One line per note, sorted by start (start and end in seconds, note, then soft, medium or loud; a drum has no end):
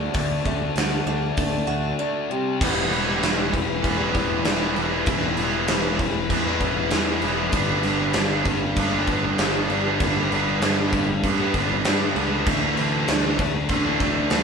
0.00 0.12 D3 medium
0.00 0.12 A3 medium
0.00 0.45 A3 medium
0.00 0.12 D4 medium
0.00 1.06 D4 medium
0.00 0.74 F#4 medium
0.13 0.39 D2 medium
0.13 0.43 D3 medium
0.13 0.43 A3 loud
0.13 0.44 D4 loud
0.13 kick loud
0.13 open hi-hat medium
0.44 0.69 D2 medium
0.44 0.75 D3 medium
0.44 0.75 A3 medium
0.44 0.75 D4 medium
0.44 kick medium
0.76 1.00 D2 medium
0.76 1.06 D3 medium
0.76 1.07 A3 medium
0.76 1.07 D4 medium
0.76 1.66 F#4 medium
0.76 snare loud
0.76 open hi-hat medium
1.06 1.30 D2 medium
1.06 1.37 D3 medium
1.06 1.37 A3 medium
1.06 1.38 D4 medium
1.38 1.62 D2 medium
1.38 1.68 D3 medium
1.38 1.69 A3 medium
1.38 1.69 D4 loud
1.38 kick loud
1.38 open hi-hat soft
1.67 1.92 D2 medium
1.67 1.99 D3 medium
1.67 2.00 A3 medium
1.67 2.00 D4 medium
1.67 2.29 F#4 medium
2.00 2.29 D3 medium
2.00 2.29 A3 medium
2.00 2.29 D4 loud
2.30 2.59 C3 medium
2.30 2.59 G3 medium
2.30 2.60 C4 loud
2.61 2.89 E1 medium
2.61 3.22 E3 medium
2.61 3.08 G3 medium
2.61 3.07 B3 medium
2.61 3.06 E4 loud
2.61 kick loud
2.61 crash loud
2.61 crash medium
2.89 3.20 E1 medium
2.89 3.21 E3 medium
2.89 3.23 G3 medium
2.89 crash medium
2.94 3.23 B3 medium
2.94 3.24 E4 medium
3.07 3.22 G3 medium
3.07 3.23 B3 medium
3.07 3.23 E4 medium
3.21 3.51 E1 medium
3.21 3.52 E3 medium
3.21 3.53 G3 medium
3.21 3.53 B3 medium
3.21 3.54 E4 loud
3.21 snare loud
3.21 crash medium
3.36 3.53 G3 medium
3.36 3.53 B3 medium
3.36 3.54 E4 medium
3.53 3.83 E1 medium
3.53 3.99 E3 medium
3.53 3.68 G3 medium
3.53 3.67 B3 medium
3.53 3.66 E4 medium
3.53 muted distorted electric guitar stroke soft
3.53 kick medium
3.53 crash medium
3.67 muted distorted electric guitar stroke soft
3.82 4.42 E1 medium
3.82 4.13 E3 medium
3.82 4.00 G3 medium
3.82 3.99 B3 medium
3.82 3.96 E4 medium
3.82 kick medium
3.82 crash medium
3.97 4.12 G3 medium
3.97 4.14 B3 medium
3.97 4.12 E4 medium
4.12 4.42 E3 medium
4.12 4.29 G3 medium
4.12 4.29 B3 medium
4.12 4.27 E4 medium
4.12 kick medium
4.12 crash medium
4.28 muted distorted electric guitar stroke medium
4.43 4.75 E1 medium
4.43 4.76 E3 medium
4.43 4.61 G3 medium
4.43 4.61 B3 loud
4.43 4.59 E4 loud
4.43 snare loud
4.43 crash medium
4.60 4.77 G3 medium
4.60 4.78 B3 medium
4.60 4.77 E4 medium
4.76 5.06 E1 medium
4.76 5.06 E3 medium
4.76 5.07 G3 medium
4.76 5.08 B3 medium
4.76 5.08 E4 medium
4.76 crash medium
4.91 5.08 G3 medium
4.91 5.09 B3 medium
4.91 5.09 E4 medium
5.06 5.36 E1 medium
5.06 5.69 E3 medium
5.06 5.56 G3 medium
5.06 5.54 B3 loud
5.06 5.54 E4 loud
5.06 kick loud
5.06 crash medium
5.37 5.67 E1 medium
5.37 5.67 E3 medium
5.37 5.70 G3 medium
5.37 5.71 B3 medium
5.37 5.71 E4 medium
5.37 crash medium
5.55 5.70 G3 medium
5.55 5.71 B3 medium
5.55 5.70 E4 medium
5.68 5.98 E1 loud
5.68 5.99 E3 medium
5.68 6.01 G3 loud
5.68 6.01 B3 medium
5.68 6.01 E4 loud
5.68 snare loud
5.68 crash medium
5.83 5.98 G3 medium
5.83 5.98 B3 medium
5.83 5.99 E4 medium
5.99 6.28 E1 medium
5.99 6.46 E3 medium
5.99 6.18 G3 medium
5.99 6.17 B3 medium
5.99 6.16 E4 medium
5.99 muted distorted electric guitar stroke soft
5.99 kick medium
5.99 crash medium
6.17 muted distorted electric guitar stroke soft
6.30 6.59 E2 medium
6.30 6.58 E3 medium
6.30 6.47 G3 medium
6.30 6.45 B3 medium
6.30 6.43 E4 medium
6.30 kick medium
6.30 crash medium
6.46 6.63 G3 medium
6.46 6.64 B3 medium
6.46 6.64 E4 medium
6.60 6.90 E1 medium
6.60 6.91 E3 medium
6.60 6.78 G3 medium
6.60 kick medium
6.60 crash medium
6.64 6.78 B3 medium
6.64 6.77 E4 medium
6.78 muted distorted electric guitar stroke medium
6.90 7.22 E2 medium
6.90 7.22 E3 loud
6.90 7.11 G3 medium
6.90 7.08 E4 loud
6.90 snare loud
6.90 crash medium
6.94 7.09 B3 loud
7.09 7.24 G3 medium
7.09 7.24 B3 medium
7.09 7.24 E4 medium
7.22 7.52 E1 medium
7.22 7.52 E3 medium
7.22 7.55 G3 medium
7.22 7.55 B3 medium
7.22 7.53 E4 medium
7.22 crash medium
7.37 7.54 G3 medium
7.37 7.55 B3 medium
7.37 7.51 E4 medium
7.52 7.82 G1 medium
7.52 8.15 G2 medium
7.52 8.15 D3 medium
7.52 8.01 G3 loud
7.52 8.01 B3 loud
7.52 7.99 D4 loud
7.52 kick loud
7.52 crash medium
7.83 8.14 G1 medium
7.83 8.13 D3 medium
7.83 8.15 G3 medium
7.83 8.16 B3 medium
7.83 8.16 D4 medium
7.83 crash medium
7.99 8.16 G3 medium
7.99 8.17 B3 medium
7.99 8.17 D4 medium
8.13 8.44 G1 loud
8.13 9.40 G2 medium
8.13 8.45 D3 medium
8.13 8.46 G3 medium
8.13 8.48 B3 medium
8.13 snare loud
8.13 crash medium
8.17 8.48 D4 loud
8.30 8.46 G3 medium
8.30 8.46 B3 medium
8.30 8.47 D4 medium
8.45 8.75 G1 medium
8.45 8.63 D3 medium
8.45 8.62 G3 medium
8.45 8.62 B3 medium
8.45 8.63 D4 medium
8.45 muted distorted electric guitar stroke soft
8.45 kick medium
8.45 crash medium
8.63 muted distorted electric guitar stroke soft
8.76 9.35 G1 medium
8.76 9.07 D3 medium
8.76 8.94 G3 medium
8.76 8.93 B3 medium
8.76 8.91 D4 medium
8.76 kick medium
8.76 crash medium
8.93 9.07 G3 medium
8.93 9.08 B3 medium
8.93 9.10 D4 medium
9.07 9.24 D3 medium
9.07 9.23 G3 medium
9.07 9.23 B3 medium
9.07 9.24 D4 medium
9.07 kick medium
9.07 crash medium
9.24 muted distorted electric guitar stroke soft
9.38 9.67 G1 medium
9.38 9.86 G2 loud
9.38 9.68 D3 loud
9.38 9.55 G3 loud
9.38 snare loud
9.38 crash medium
9.42 9.55 B3 loud
9.42 9.54 D4 loud
9.55 9.69 G3 medium
9.55 9.70 B3 medium
9.55 9.71 D4 medium
9.69 9.99 G1 medium
9.69 9.99 D3 medium
9.69 10.00 G3 medium
9.69 9.99 B3 medium
9.69 10.01 D4 medium
9.69 crash medium
9.85 10.01 G3 medium
9.85 10.01 B3 medium
9.85 10.03 D4 medium
10.00 10.30 G1 medium
10.00 10.60 G2 loud
10.00 10.61 D3 medium
10.00 10.48 G3 loud
10.00 10.47 B3 loud
10.00 10.46 D4 loud
10.00 kick loud
10.00 crash medium
10.31 10.60 G1 medium
10.31 10.61 D3 medium
10.31 10.62 G3 medium
10.31 10.63 B3 medium
10.31 10.65 D4 medium
10.31 crash medium
10.47 10.61 G3 medium
10.47 10.62 B3 medium
10.47 10.63 D4 medium
10.60 10.90 G1 loud
10.60 11.23 G2 medium
10.60 10.92 D3 medium
10.60 10.92 G3 medium
10.60 10.92 B3 loud
10.60 10.93 D4 medium
10.60 snare loud
10.60 crash medium
10.76 10.93 G3 medium
10.76 10.93 B3 medium
10.76 10.93 D4 medium
10.92 11.22 G1 medium
10.92 11.07 D3 medium
10.92 11.07 G3 medium
10.92 11.06 B3 medium
10.92 11.07 D4 medium
10.92 muted distorted electric guitar stroke medium
10.92 kick medium
10.92 crash medium
11.07 muted distorted electric guitar stroke soft
11.24 11.53 G2 medium
11.24 11.53 D3 medium
11.24 11.42 G3 medium
11.24 11.40 B3 medium
11.24 11.39 D4 medium
11.24 kick medium
11.24 crash medium
11.39 11.53 G3 medium
11.39 11.54 B3 medium
11.39 11.55 D4 medium
11.54 11.83 G1 medium
11.54 11.70 D3 medium
11.54 11.70 G3 medium
11.54 11.69 B3 medium
11.54 11.70 D4 medium
11.54 kick medium
11.54 crash medium
11.70 muted distorted electric guitar stroke soft
11.84 12.31 G2 loud
11.84 12.14 G2 medium
11.84 12.14 D3 loud
11.84 12.01 G3 loud
11.84 12.00 B3 loud
11.84 12.00 D4 loud
11.84 snare loud
11.84 crash medium
12.00 12.15 G3 medium
12.00 12.16 B3 medium
12.00 12.17 D4 medium
12.15 12.45 C#2 medium
12.15 12.44 D3 medium
12.15 12.45 G3 medium
12.15 12.45 B3 medium
12.15 12.47 D4 medium
12.15 crash medium
12.33 12.47 G3 medium
12.33 12.46 B3 medium
12.33 12.49 D4 medium
12.46 12.76 D2 medium
12.46 13.08 D3 medium
12.46 12.94 E3 medium
12.46 12.93 A3 loud
12.46 12.93 D4 loud
12.46 kick loud
12.46 crash medium
12.77 13.06 D2 medium
12.77 13.08 D3 medium
12.77 13.10 E3 medium
12.77 13.11 A3 medium
12.77 crash medium
12.81 13.12 D4 medium
12.93 13.09 E3 medium
12.93 13.09 A3 medium
12.93 13.10 D4 medium
13.08 13.37 D2 medium
13.08 13.38 D3 medium
13.08 13.39 E3 medium
13.08 13.38 A3 medium
13.08 13.40 D4 loud
13.08 snare loud
13.08 crash medium
13.24 13.39 E3 medium
13.24 13.39 A3 medium
13.24 13.40 D4 medium
13.38 13.68 D2 medium
13.38 13.85 D3 medium
13.38 13.55 E3 medium
13.38 13.55 A3 medium
13.38 13.55 D4 medium
13.38 muted distorted electric guitar stroke soft
13.38 kick medium
13.38 crash medium
13.55 muted distorted electric guitar stroke soft
13.69 14.28 D2 medium
13.69 13.97 D3 medium
13.69 13.86 E3 medium
13.69 13.84 A3 medium
13.69 kick medium
13.69 crash medium
13.73 13.84 D4 medium
13.85 14.00 E3 medium
13.85 14.01 A3 medium
13.85 14.02 D4 medium
14.00 14.29 D3 medium
14.00 14.16 E3 medium
14.00 14.16 A3 medium
14.00 14.16 D4 medium
14.00 kick medium
14.00 crash medium
14.16 muted distorted electric guitar stroke medium
14.30 14.43 D2 medium
14.30 14.43 D3 loud
14.30 14.43 E3 loud
14.30 14.43 A3 loud
14.30 14.43 D4 loud
14.30 snare loud
14.30 crash medium